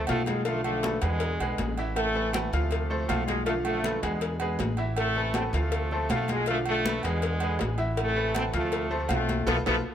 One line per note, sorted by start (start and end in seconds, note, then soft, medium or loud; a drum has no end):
0.00 0.24 C3 medium
0.00 0.24 F3 medium
0.07 0.96 B1 medium
0.07 0.40 F3 loud
0.07 0.26 A3 loud
0.07 0.39 F4 medium
0.07 0.40 F5 medium
0.07 cowbell medium
0.07 high conga medium
0.07 low agogo loud
0.26 0.44 G#3 medium
0.26 cowbell medium
0.26 high conga medium
0.26 low agogo medium
0.45 0.64 D3 medium
0.45 0.77 F3 medium
0.45 0.64 F3 medium
0.45 0.63 A3 loud
0.45 0.77 F4 medium
0.45 0.77 F5 medium
0.45 cowbell loud
0.45 high conga soft
0.45 low agogo medium
0.64 1.02 D3 medium
0.64 1.17 F3 medium
0.64 0.99 A3 loud
0.64 high conga soft
0.64 low agogo loud
0.83 0.99 A3 medium
0.83 0.99 A4 medium
0.83 0.99 B4 medium
0.83 cowbell medium
0.83 high conga loud
1.01 1.37 E2 loud
1.01 1.74 B2 medium
1.01 1.74 D3 medium
1.01 1.73 G#3 loud
1.01 1.33 G#3 medium
1.01 1.33 G#4 medium
1.01 1.33 B4 medium
1.01 cowbell medium
1.01 high conga soft
1.01 low agogo loud
1.20 cowbell loud
1.20 high conga soft
1.20 low agogo medium
1.39 1.57 B1 medium
1.39 1.71 G#3 medium
1.39 1.72 G#4 medium
1.39 1.72 B4 medium
1.39 high conga soft
1.39 low agogo loud
1.58 2.47 A1 medium
1.58 cowbell medium
1.58 high conga medium
1.77 2.09 E3 medium
1.77 2.09 E4 medium
1.77 2.09 E5 medium
1.77 high conga soft
1.77 low agogo medium
1.96 2.52 C3 medium
1.96 2.68 E3 medium
1.96 2.31 A3 loud
1.96 cowbell loud
1.96 high conga soft
1.96 low agogo loud
2.15 2.30 A3 medium
2.15 2.31 A4 medium
2.15 2.31 B4 medium
2.15 high conga soft
2.33 2.50 A3 medium
2.33 2.38 C4 loud
2.33 2.50 A4 medium
2.33 2.50 B4 medium
2.33 cowbell medium
2.33 high conga loud
2.33 low agogo loud
2.47 2.53 B3 medium
2.52 3.05 D2 loud
2.52 3.24 C3 medium
2.52 2.84 F3 medium
2.52 3.25 F3 medium
2.52 3.07 A3 loud
2.52 2.84 F4 medium
2.52 2.84 F5 medium
2.52 cowbell medium
2.52 high conga soft
2.71 cowbell loud
2.71 high conga soft
2.71 low agogo medium
2.90 3.06 A3 medium
2.90 3.06 A4 medium
2.90 3.06 C5 medium
2.90 high conga soft
3.08 3.97 B1 medium
3.08 3.40 F3 medium
3.08 3.26 A3 medium
3.08 3.40 F4 medium
3.08 3.40 F5 medium
3.08 cowbell medium
3.08 high conga medium
3.08 low timbale medium
3.08 low agogo loud
3.26 3.45 G#3 medium
3.26 cowbell medium
3.26 high conga medium
3.26 low agogo medium
3.46 3.65 D3 medium
3.46 3.77 F3 loud
3.46 3.65 F3 medium
3.46 3.55 A3 loud
3.46 3.77 F4 medium
3.46 3.78 F5 medium
3.46 cowbell loud
3.46 high conga soft
3.46 low agogo medium
3.65 4.03 D3 medium
3.65 4.18 F3 medium
3.65 4.00 A3 loud
3.65 high conga soft
3.65 low agogo loud
3.83 3.99 A3 medium
3.83 4.00 A4 medium
3.83 4.00 B4 medium
3.83 cowbell medium
3.83 high conga loud
4.02 4.56 E2 loud
4.02 4.75 B2 medium
4.02 4.75 D3 medium
4.02 4.34 G#3 medium
4.02 4.48 G#3 medium
4.02 4.34 G#4 medium
4.02 4.34 B4 medium
4.02 cowbell medium
4.02 high conga soft
4.02 low agogo medium
4.21 cowbell loud
4.21 high conga soft
4.21 low agogo medium
4.40 4.72 G#3 medium
4.40 4.72 G#4 medium
4.40 4.72 B4 medium
4.40 high conga soft
4.40 low agogo loud
4.59 5.48 A1 medium
4.59 cowbell medium
4.59 high conga medium
4.59 low timbale medium
4.77 5.09 E3 medium
4.77 5.09 E4 medium
4.77 5.09 E5 medium
4.77 high conga soft
4.77 low agogo medium
4.96 5.54 C3 medium
4.96 5.69 E3 medium
4.96 5.33 A3 loud
4.96 cowbell loud
4.96 high conga soft
4.96 low agogo loud
5.16 5.32 A3 medium
5.16 5.32 A4 medium
5.16 5.32 B4 medium
5.16 high conga soft
5.34 5.50 A3 medium
5.34 5.47 C4 loud
5.34 5.51 A4 medium
5.34 5.51 B4 medium
5.34 cowbell medium
5.34 high conga loud
5.34 low agogo loud
5.48 5.54 B3 medium
5.53 6.06 D2 loud
5.53 6.26 C3 medium
5.53 5.85 F3 medium
5.53 6.26 F3 medium
5.53 6.11 A3 loud
5.53 5.85 F4 medium
5.53 5.85 F5 medium
5.53 cowbell medium
5.72 cowbell loud
5.72 high conga soft
5.72 low agogo medium
5.91 6.07 A3 medium
5.91 6.07 A4 medium
5.91 6.07 C5 medium
5.91 high conga soft
6.09 6.98 B1 medium
6.09 6.41 F3 medium
6.09 6.29 A3 loud
6.09 6.41 F4 medium
6.09 6.41 F5 medium
6.09 cowbell medium
6.09 high conga medium
6.09 low timbale medium
6.09 low agogo loud
6.28 6.49 G#3 medium
6.28 cowbell medium
6.28 high conga medium
6.28 low agogo medium
6.46 6.66 D3 medium
6.46 6.78 F3 medium
6.46 6.66 F3 medium
6.46 6.58 A3 loud
6.46 6.79 F4 medium
6.46 6.79 F5 loud
6.46 cowbell loud
6.46 high conga soft
6.46 low agogo medium
6.66 7.03 D3 medium
6.66 7.20 F3 medium
6.66 7.03 A3 loud
6.66 high conga soft
6.66 low agogo loud
6.85 7.00 A3 medium
6.85 7.01 A4 medium
6.85 7.01 B4 medium
6.85 cowbell medium
6.85 high conga loud
7.03 7.57 E2 loud
7.03 7.76 B2 medium
7.03 7.75 D3 medium
7.03 7.35 G#3 medium
7.03 7.80 G#3 loud
7.03 7.35 G#4 medium
7.03 7.35 B4 medium
7.03 cowbell medium
7.03 high conga soft
7.03 low agogo medium
7.22 cowbell loud
7.22 high conga soft
7.22 low agogo medium
7.40 7.73 G#3 medium
7.40 7.73 G#4 medium
7.40 7.73 B4 medium
7.40 high conga soft
7.40 low agogo loud
7.59 8.49 A1 medium
7.59 cowbell medium
7.59 high conga medium
7.59 low timbale medium
7.78 8.09 E3 medium
7.78 8.09 E4 medium
7.78 8.09 E5 loud
7.78 high conga soft
7.78 low agogo medium
7.97 8.54 C3 medium
7.97 8.70 E3 medium
7.97 8.35 A3 loud
7.97 cowbell loud
7.97 high conga soft
7.97 low agogo loud
8.16 8.32 A3 medium
8.16 8.32 A4 medium
8.16 8.32 B4 medium
8.16 high conga soft
8.35 8.50 A3 medium
8.35 8.46 C4 loud
8.35 8.50 A4 medium
8.35 8.51 B4 medium
8.35 cowbell medium
8.35 high conga medium
8.35 low agogo loud
8.53 9.06 D2 loud
8.53 9.26 C3 medium
8.53 8.85 F3 medium
8.53 9.11 F3 medium
8.53 9.08 A3 loud
8.53 8.85 F4 medium
8.53 8.85 F5 medium
8.53 cowbell medium
8.53 high conga soft
8.72 cowbell loud
8.72 high conga soft
8.72 low agogo medium
8.90 9.06 A3 medium
8.90 9.07 A4 medium
8.90 9.07 C5 medium
8.90 high conga soft
9.08 9.45 B1 loud
9.08 9.40 F3 medium
9.08 9.46 F3 medium
9.08 9.46 C4 medium
9.08 9.40 F4 medium
9.08 9.40 F5 medium
9.08 cowbell medium
9.08 high conga medium
9.08 low agogo loud
9.13 9.47 A3 loud
9.29 cowbell medium
9.29 high conga medium
9.29 low agogo medium
9.47 9.62 B1 loud
9.47 9.57 F3 loud
9.47 9.57 A3 loud
9.47 9.57 B3 loud
9.47 9.59 F4 loud
9.47 9.59 A4 loud
9.47 9.59 B4 loud
9.47 cowbell loud
9.47 high conga loud
9.47 high timbale loud
9.66 9.81 B1 loud
9.66 9.76 F3 loud
9.66 9.76 A3 loud
9.66 9.76 B3 loud
9.66 9.79 F4 loud
9.66 9.79 A4 loud
9.66 9.79 B4 loud
9.66 cowbell loud
9.66 high conga loud
9.66 high timbale loud